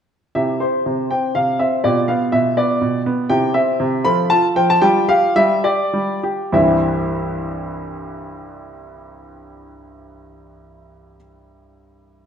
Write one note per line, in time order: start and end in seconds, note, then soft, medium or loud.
0.35 0.60 C3 soft
0.35 1.80 E4 soft
0.35 1.80 G4 soft
0.35 0.60 E5 medium
0.60 0.85 C4 soft
0.60 1.10 C5 medium
0.86 1.10 C3 soft
1.11 1.35 C4 soft
1.11 1.35 G5 medium
1.35 1.59 C3 soft
1.35 1.59 F5 medium
1.59 1.83 C4 soft
1.59 1.74 E5 medium
1.84 2.08 B2 soft
1.84 3.26 F4 soft
1.84 3.26 G4 soft
1.84 1.99 D5 medium
2.08 2.32 B3 soft
2.08 2.23 F5 medium
2.32 2.56 B2 soft
2.32 2.57 E5 medium
2.57 2.81 B3 soft
2.57 3.01 D5 medium
2.81 3.05 B2 soft
3.06 3.29 B3 soft
3.30 3.54 C3 medium
3.30 4.00 E4 soft
3.30 4.00 G4 soft
3.30 3.54 G5 medium
3.54 3.79 C4 soft
3.54 4.04 E5 medium
3.80 4.04 C3 medium
4.05 4.30 F3 medium
4.05 4.29 F4 soft
4.05 4.78 A4 soft
4.05 4.27 B5 medium
4.30 4.55 F4 medium
4.30 4.45 A5 medium
4.56 4.82 F3 medium
4.56 4.69 G5 medium
4.70 4.83 A5 medium
4.81 5.08 G3 medium
4.81 6.50 F4 soft
4.81 5.07 G4 soft
4.81 5.06 G5 medium
5.09 5.35 G4 medium
5.09 5.33 F5 medium
5.36 5.64 G3 medium
5.36 5.62 E5 medium
5.64 5.93 G4 medium
5.64 6.18 D5 medium
5.93 6.23 G3 medium
6.23 6.53 G4 soft
6.52 11.16 C2 medium
6.52 11.16 G2 soft
6.52 11.16 E3 soft
6.52 11.16 G3 soft
6.52 11.16 C4 soft
6.52 11.17 E4 soft
6.52 11.17 E5 medium